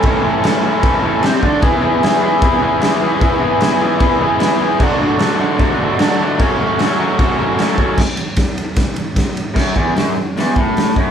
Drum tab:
CC |x-x-x-x-|x-x-x-x-|x-x-x-x-|x-x-x-x-|
RD |--------|--------|--------|--------|
HH |--------|--------|--------|--------|
SD |--o---o-|--o---o-|--o---o-|--o---o-|
BD |o---o--o|o---o---|o---o---|o---o---|

CC |x-x-x-x-|x-------|x-------|
RD |--------|-xxxxxxx|--------|
HH |--------|--------|--o-o-o-|
SD |--o---o-|o-o-o-o-|o-o-o-o-|
BD |o---o--o|o-o-o-o-|oo---o-o|